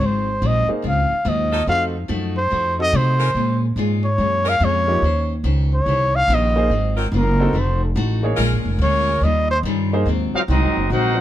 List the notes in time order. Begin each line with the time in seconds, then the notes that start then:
0.00 G#1 G#2 F#3 C4 F4
0.06 C5
0.42 A#1 G#2 F#3 C4 F4
0.47 D#5
0.69 A#3 D#4 G#4 C5, muted upright bass stroke
0.82 C#2 G#2 F#3 C4 F4
0.89 F5
1.11 muted upright bass stroke
1.25 D#2 G#2 F#3 C4 F4
1.29 D#5
1.52 F#3 D#4 F4 A4
1.67 F2 F3 A3 C4 D#4 F#4 A4 F5
2.08 F#2 F3 A3 D#4 F#4
2.38 C5
2.50 F2 F3 A3 D#4 F#4
2.79 C4 D#4 F#4 A4 D#5
2.93 C3 F3 A3 D#4 F#4 C5
3.18 G#3 C#4 F4 A#4
3.34 A#2 G#3 C#4 F4
3.76 G#2 A#2 G#3 C#4 F4
4.05 C#5
4.18 F#2 A#2 G#3 C#4 F4
4.44 G#3 C#4 F4 A#4
4.49 F5
4.60 F2 A#2 G#3 C#4 F4
4.65 C#5
4.88 F3 A#3 D#4 G4
5.02 D#2 D#3 C#4 G4 C5
5.44 C#2 D#3 C#4 G4 C5
5.74 C#5
5.86 C2 D#3 C#4 G4 C5
6.16 F5
6.28 A#1 D#3 C#4 G4 C5
6.34 D#5
6.56 A#3 D#4 G#4 C5
6.70 G#1 G#2 F#3 C4 F4
6.96 F#3 C4 F4 A#4
7.12 F#1 G#2 F#3 C4 F4
7.16 A#4
7.40 C4 D#4 F#4 A4
7.53 F1 F3 A3 D#4 F#4
7.60 C5
7.85 A4
7.96 A1 F3 A3 D#4 F#4
8.23 A#3 D#4 G#4 C#5
8.37 A#1 A#2 G#3 C#4 F4 A#4
8.51 G#1
8.66 F1
8.79 D2 A#2 G#3 C#4 F4
8.83 C#5
9.21 D#2 D#3 G3 C#4 F4 D#5
9.51 C5
9.63 G2 D#3 G3 C#4 F4
9.93 A#3 D#4 G#4 C5
10.06 D#2 G#2 F#3 C4 F4
10.34 F#3 C4 D#4 F4 A#4 C5 F5, muted upright bass stroke
10.48 C2 G#2 F#3 C4 D#4 F#4 A#4 D#5
10.52 F4
10.63 G#1
10.77 F#1
10.90 A#1 G#2 F#3 C4 D#4 F#4 A#4 C5 F#5
10.94 F4
11.16 F#3 C4 F4